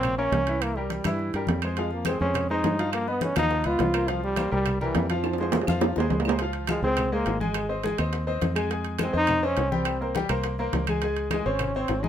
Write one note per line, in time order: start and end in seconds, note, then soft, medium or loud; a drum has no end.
0.00 0.30 A#1 medium
0.00 0.13 A#3 medium
0.00 0.18 C4 loud
0.00 0.13 A#4 medium
0.00 0.14 C#5 medium
0.00 high timbale medium
0.04 high conga soft
0.04 low conga medium
0.04 claves medium
0.18 0.42 A#3 medium
0.18 0.64 C#4 loud
0.18 0.42 A#4 medium
0.18 0.42 C#5 medium
0.18 high conga soft
0.32 0.99 C2 medium
0.32 high conga medium
0.32 high timbale medium
0.32 low timbale medium
0.47 0.71 E3 medium
0.47 0.71 E4 medium
0.47 0.72 E5 medium
0.47 high timbale medium
0.62 0.79 A#3 loud
0.62 high conga soft
0.62 high timbale loud
0.62 claves medium
0.76 1.00 G3 medium
0.76 1.34 G3 medium
0.76 1.00 G4 medium
0.76 1.01 A#4 medium
0.76 high conga soft
0.90 high conga medium
0.90 high timbale medium
0.90 low timbale medium
1.04 1.32 G2 medium
1.04 1.29 E3 medium
1.04 1.29 E4 medium
1.04 1.29 E5 medium
1.04 high conga loud
1.04 high timbale medium
1.04 claves medium
1.19 high conga soft
1.33 1.47 G2 medium
1.33 1.59 G3 medium
1.33 1.59 G4 medium
1.33 1.59 A#4 medium
1.33 high conga soft
1.33 high timbale medium
1.47 2.15 F2 loud
1.47 high conga medium
1.47 high timbale medium
1.47 low timbale medium
1.62 1.75 G#3 medium
1.62 1.76 G#4 medium
1.62 1.76 C5 medium
1.62 high timbale medium
1.62 claves medium
1.76 2.02 F3 medium
1.76 1.91 G#3 medium
1.76 2.02 F4 medium
1.76 2.02 F5 medium
1.76 high bongo medium
1.76 high conga soft
1.76 high timbale medium
1.91 2.10 A#3 medium
1.91 high bongo soft
1.91 high conga soft
2.05 2.19 G#3 medium
2.05 2.21 C4 medium
2.05 2.19 G#4 medium
2.05 2.19 C5 medium
2.05 high bongo medium
2.05 high conga medium
2.05 high timbale medium
2.05 low timbale medium
2.05 claves medium
2.20 2.61 F2 medium
2.20 2.45 G#3 medium
2.20 2.48 C#4 loud
2.20 2.45 G#4 medium
2.20 2.45 C5 medium
2.20 high bongo soft
2.20 high conga soft
2.34 high bongo medium
2.34 high conga soft
2.34 low conga medium
2.34 high timbale medium
2.34 claves medium
2.49 2.74 G#3 medium
2.49 2.91 D#4 loud
2.49 2.74 G#4 medium
2.49 2.74 C5 medium
2.49 high bongo soft
2.49 high conga soft
2.64 3.31 G2 loud
2.64 high bongo medium
2.64 low bongo medium
2.64 high conga medium
2.64 high timbale medium
2.64 low timbale medium
2.79 3.03 F3 medium
2.79 3.03 F4 medium
2.79 3.03 F5 medium
2.79 high timbale medium
2.93 3.07 A#3 loud
2.93 high bongo medium
2.93 high conga soft
2.93 high timbale medium
2.93 claves medium
3.07 3.31 B3 medium
3.07 3.25 B3 medium
3.07 3.31 B4 medium
3.07 3.32 D#5 medium
3.07 high bongo soft
3.07 high conga soft
3.21 3.37 C#4 loud
3.21 high bongo medium
3.21 high conga medium
3.21 high timbale medium
3.21 low timbale medium
3.36 3.63 D#2 medium
3.36 3.60 F3 medium
3.36 3.68 D#4 loud
3.36 3.60 F4 medium
3.36 3.61 F5 medium
3.36 high bongo soft
3.36 high conga medium
3.36 high timbale medium
3.36 claves medium
3.51 high bongo medium
3.51 high conga soft
3.64 3.79 C#2 medium
3.64 3.89 B3 medium
3.64 4.11 F4 loud
3.64 3.89 B4 medium
3.64 3.89 D#5 medium
3.64 high conga soft
3.64 high timbale medium
3.79 4.47 C2 loud
3.79 high bongo medium
3.79 low bongo medium
3.79 high conga medium
3.79 high timbale medium
3.79 low timbale medium
3.94 4.06 A#3 medium
3.94 4.06 A#4 medium
3.94 4.06 C5 medium
3.94 high timbale loud
3.94 claves medium
4.08 4.32 F3 medium
4.08 4.23 F3 loud
4.08 4.32 F4 medium
4.08 4.32 F5 medium
4.08 high bongo medium
4.08 high conga soft
4.08 high timbale medium
4.23 4.50 G3 loud
4.23 high bongo soft
4.23 high conga soft
4.36 4.49 A#3 medium
4.36 4.50 A#4 medium
4.36 4.50 C5 medium
4.36 high bongo medium
4.36 high conga medium
4.36 high timbale medium
4.36 low timbale medium
4.36 claves medium
4.51 4.92 C2 medium
4.51 4.75 G3 medium
4.51 4.80 G3 medium
4.51 4.75 G4 medium
4.51 4.75 A#4 medium
4.51 high bongo soft
4.51 high conga soft
4.66 high bongo medium
4.66 high conga soft
4.66 low conga medium
4.66 high timbale medium
4.66 claves medium
4.81 5.08 E3 medium
4.81 5.05 G3 medium
4.81 5.05 G4 medium
4.81 5.05 A#4 medium
4.81 high bongo soft
4.81 high conga soft
4.81 low conga medium
4.95 5.62 F2 loud
4.95 high bongo medium
4.95 low bongo medium
4.95 high conga medium
4.95 high timbale medium
4.95 low timbale medium
5.10 5.34 F3 medium
5.10 6.07 F3 medium
5.10 5.34 F4 medium
5.10 5.34 F5 medium
5.10 high timbale medium
5.24 high bongo medium
5.24 high conga soft
5.24 high timbale medium
5.24 claves medium
5.33 high timbale medium
5.38 5.63 G#3 medium
5.38 5.63 G#4 medium
5.38 5.64 C5 medium
5.38 high bongo medium
5.38 high conga soft
5.43 high timbale medium
5.52 high bongo medium
5.52 high conga medium
5.52 low timbale loud
5.61 low timbale medium
5.67 5.95 F2 medium
5.67 5.92 F3 medium
5.67 5.92 F4 medium
5.67 5.92 F5 medium
5.67 low bongo medium
5.67 high conga medium
5.67 claves medium
5.81 low bongo loud
5.81 low timbale loud
5.96 6.10 D#2 medium
5.96 6.21 G#3 medium
5.96 6.21 G#4 medium
5.96 6.21 C5 medium
5.96 low bongo medium
5.96 high conga soft
6.00 low timbale medium
6.10 6.78 C#2 medium
6.10 high conga medium
6.10 low timbale medium
6.20 low timbale medium
6.25 6.38 G#3 medium
6.25 6.38 G#4 medium
6.25 6.39 C5 medium
6.25 low bongo medium
6.25 claves medium
6.29 low timbale loud
6.39 6.65 F3 medium
6.39 6.65 F4 medium
6.39 6.65 F5 medium
6.39 high bongo medium
6.39 high conga soft
6.39 high timbale medium
6.53 high conga soft
6.53 high timbale medium
6.67 6.81 F3 medium
6.67 6.83 G#3 medium
6.67 6.81 F4 medium
6.67 6.81 F5 medium
6.67 high bongo medium
6.67 high conga medium
6.67 high timbale loud
6.67 claves medium
6.82 7.23 C#2 medium
6.82 7.07 G#3 medium
6.82 7.15 C4 loud
6.82 7.07 G#4 medium
6.82 7.08 C5 medium
6.82 high conga soft
6.97 high bongo medium
6.97 high conga soft
6.97 low conga medium
6.97 high timbale medium
6.97 claves medium
7.12 7.36 G#3 medium
7.12 7.41 A#3 loud
7.12 7.36 G#4 medium
7.12 7.36 C5 medium
7.12 high conga soft
7.26 7.93 G#1 loud
7.26 high bongo medium
7.26 low bongo medium
7.26 high conga soft
7.26 high timbale medium
7.40 7.64 G#3 medium
7.40 7.82 G#3 medium
7.40 7.64 G#4 medium
7.40 7.65 G#5 medium
7.40 high conga medium
7.54 high bongo medium
7.54 high conga soft
7.54 high timbale loud
7.54 claves medium
7.69 7.81 C4 medium
7.69 7.81 C5 medium
7.69 7.81 D#5 medium
7.69 high conga soft
7.83 7.96 G#3 medium
7.83 7.96 G#4 medium
7.83 7.96 G#5 medium
7.83 high bongo medium
7.83 high conga medium
7.83 high timbale medium
7.98 8.39 D#2 medium
7.98 8.22 C4 medium
7.98 8.23 C5 medium
7.98 8.23 D#5 medium
7.98 high bongo soft
7.98 high conga soft
7.98 high timbale medium
7.98 claves medium
8.13 high bongo medium
8.13 high conga soft
8.13 high timbale medium
8.27 8.51 C4 medium
8.27 8.51 C5 medium
8.27 8.51 D#5 medium
8.27 high bongo soft
8.27 high conga soft
8.42 9.09 F2 medium
8.42 high bongo medium
8.42 low bongo medium
8.42 high conga medium
8.42 high timbale medium
8.55 8.68 G#3 medium
8.55 8.68 G#4 medium
8.55 8.68 G#5 medium
8.55 high bongo soft
8.55 high timbale medium
8.55 claves medium
8.70 8.94 G#3 medium
8.70 8.94 G#4 medium
8.70 8.95 G#5 medium
8.70 high bongo medium
8.70 high conga soft
8.70 high timbale medium
8.85 high conga soft
8.85 high timbale medium
8.99 9.11 G#3 medium
8.99 9.12 G#4 medium
8.99 9.12 G#5 medium
8.99 high bongo medium
8.99 high conga medium
8.99 high timbale medium
8.99 claves medium
9.03 9.15 C4 medium
9.13 9.54 F2 medium
9.13 9.37 C4 medium
9.13 9.37 C5 medium
9.13 9.38 D#5 medium
9.13 high conga soft
9.17 9.46 D#4 loud
9.27 high bongo medium
9.27 high conga soft
9.27 low conga medium
9.27 high timbale medium
9.27 claves medium
9.43 9.67 C4 medium
9.43 9.74 C#4 loud
9.43 9.67 C5 medium
9.43 9.67 D#5 medium
9.43 high conga soft
9.57 10.24 C2 medium
9.57 high bongo medium
9.57 low bongo medium
9.57 high conga soft
9.57 high timbale medium
9.71 9.95 G3 medium
9.71 10.16 C4 medium
9.71 9.96 G4 medium
9.71 9.96 G5 medium
9.71 high conga medium
9.85 high bongo medium
9.85 high conga soft
9.85 high timbale loud
9.85 claves medium
10.01 10.13 A#3 medium
10.01 10.13 A#4 medium
10.01 10.13 C5 medium
10.01 high conga soft
10.15 10.28 G3 medium
10.15 10.28 G4 medium
10.15 10.28 G5 medium
10.15 high bongo medium
10.15 high conga medium
10.15 high timbale medium
10.29 10.70 C2 medium
10.29 10.53 A#3 medium
10.29 10.53 A#4 medium
10.29 10.54 C5 medium
10.29 high bongo soft
10.29 high conga soft
10.29 high timbale medium
10.29 claves medium
10.44 high bongo medium
10.44 high conga soft
10.44 high timbale medium
10.58 10.83 A#3 medium
10.58 10.83 A#4 medium
10.58 10.83 C5 medium
10.58 high bongo soft
10.58 high conga soft
10.73 11.40 C#2 medium
10.73 high bongo medium
10.73 low bongo medium
10.73 high conga medium
10.73 high timbale medium
10.73 low timbale medium
10.87 11.00 G#3 medium
10.87 11.00 G#4 medium
10.87 11.00 G#5 medium
10.87 high bongo soft
10.87 high conga medium
10.87 high timbale medium
10.87 claves medium
11.02 11.26 G#3 medium
11.02 11.27 G#4 medium
11.02 11.26 G#5 medium
11.02 high bongo medium
11.02 high timbale medium
11.16 high conga soft
11.16 high timbale medium
11.31 11.43 G#3 medium
11.31 11.48 G#3 medium
11.31 11.44 G#4 medium
11.31 11.44 G#5 medium
11.31 high bongo medium
11.31 high conga medium
11.31 high timbale medium
11.31 claves medium
11.46 11.86 G#1 medium
11.46 11.69 C4 medium
11.46 11.78 C#4 loud
11.46 11.69 C5 medium
11.46 11.69 C#5 medium
11.46 high conga soft
11.59 high bongo medium
11.59 high conga soft
11.59 low conga medium
11.59 high timbale medium
11.59 claves medium
11.75 11.99 C4 medium
11.75 12.05 C4 medium
11.75 11.99 C5 medium
11.75 11.99 C#5 medium
11.75 high conga soft
11.88 12.09 G#1 medium
11.88 high bongo medium
11.88 low bongo medium
11.88 high conga soft
11.88 high timbale medium
12.03 12.09 G#3 medium
12.03 12.09 D#4 loud
12.03 12.09 G#4 medium
12.03 12.09 G#5 medium
12.03 high conga medium